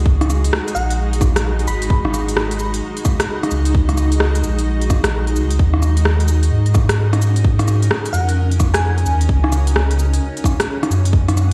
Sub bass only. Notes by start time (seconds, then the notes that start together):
Already playing: C#2
0.75 A#1
1.67 G#1
1.90 G#1
3.51 C#2
4.44 A#1
5.36 C#2
5.59 D#2
6.51 G#2
8.13 F2
9.06 D#2
9.29 C#2
10.90 F#2